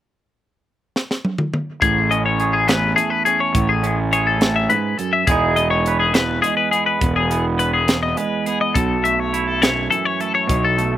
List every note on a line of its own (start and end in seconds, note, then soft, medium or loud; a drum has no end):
0.96 snare medium
1.11 snare medium
1.25 high tom medium
1.38 mid tom medium
1.54 mid tom medium
1.82 2.93 A1 medium
1.82 2.68 A2 medium
1.82 2.11 G#4 medium
1.82 kick medium
1.82 closed hi-hat medium
2.11 3.26 C#4 medium
2.11 2.25 D#5 medium
2.11 closed hi-hat soft
2.26 2.54 C#5 medium
2.40 3.57 G#4 medium
2.40 closed hi-hat medium
2.53 2.68 G#4 medium
2.68 3.55 E2 medium
2.68 2.96 B4 medium
2.68 snare loud
2.68 closed hi-hat medium
2.96 3.51 A3 medium
2.96 3.10 G#4 medium
2.96 closed hi-hat medium
3.10 3.25 B4 medium
3.25 3.52 C#4 soft
3.25 3.40 G#4 medium
3.25 closed hi-hat medium
3.40 3.69 C#5 medium
3.54 4.66 A1 medium
3.54 4.40 A2 medium
3.54 kick medium
3.54 closed hi-hat medium
3.69 3.98 G#4 medium
3.83 5.24 C#4 medium
3.83 closed hi-hat medium
4.13 5.31 G#4 medium
4.13 4.27 C#5 medium
4.13 closed hi-hat medium
4.27 4.56 A4 medium
4.41 4.70 A2 medium
4.41 snare loud
4.41 closed hi-hat medium
4.56 4.70 E5 medium
4.69 4.98 G#2 medium
4.69 4.98 B4 medium
4.69 closed hi-hat medium
4.98 5.28 F#2 medium
4.98 5.13 A4 medium
4.98 closed hi-hat medium
5.13 5.28 E5 medium
5.27 6.39 E1 medium
5.27 6.14 E2 medium
5.27 6.43 G#3 medium
5.27 5.57 B3 medium
5.27 6.99 D#4 medium
5.27 5.56 G#4 medium
5.27 kick medium
5.27 closed hi-hat medium
5.32 5.87 G#4 medium
5.56 6.73 B3 medium
5.56 5.70 D#5 medium
5.56 closed hi-hat soft
5.70 5.99 C#5 medium
5.86 7.60 B4 medium
5.86 closed hi-hat medium
6.00 6.14 G#4 medium
6.14 7.00 E2 medium
6.14 6.42 B4 medium
6.14 snare loud
6.14 closed hi-hat medium
6.42 6.98 G#3 medium
6.42 6.57 G#4 medium
6.42 closed hi-hat medium
6.57 6.71 B4 medium
6.71 7.31 B3 soft
6.71 6.86 G#4 medium
6.71 closed hi-hat medium
6.86 7.16 B4 medium
7.01 8.14 E1 medium
7.01 7.87 E2 medium
7.01 kick loud
7.01 closed hi-hat medium
7.16 7.45 G#4 medium
7.31 8.47 B3 medium
7.31 closed hi-hat medium
7.59 7.73 B4 medium
7.59 9.09 B4 medium
7.59 closed hi-hat medium
7.74 8.02 G#4 medium
7.88 8.75 E2 medium
7.88 snare loud
7.88 closed hi-hat medium
8.03 8.17 D#5 medium
8.17 8.72 G#3 medium
8.17 8.46 B4 medium
8.17 closed hi-hat medium
8.46 9.05 B3 soft
8.46 8.61 G#4 medium
8.46 closed hi-hat medium
8.61 8.76 D#5 medium
8.74 9.87 B1 medium
8.74 9.63 B2 medium
8.74 9.04 A4 medium
8.74 kick medium
8.74 closed hi-hat medium
9.04 10.19 A3 medium
9.04 9.20 E5 medium
9.04 closed hi-hat medium
9.20 9.47 C#5 medium
9.33 10.98 E4 medium
9.33 closed hi-hat medium
9.47 9.62 A4 medium
9.62 10.46 F#2 medium
9.62 9.90 C#5 medium
9.62 snare loud
9.62 closed hi-hat medium
9.90 10.98 E3 medium
9.90 10.05 A4 medium
9.90 closed hi-hat medium
10.05 10.21 C#5 medium
10.20 10.46 A3 soft
10.20 10.34 A4 medium
10.20 closed hi-hat soft
10.35 10.64 C#5 medium
10.47 10.98 B1 medium
10.47 10.98 B2 medium
10.47 kick medium
10.47 closed hi-hat medium
10.64 10.93 A4 medium
10.78 10.98 A3 medium
10.78 closed hi-hat soft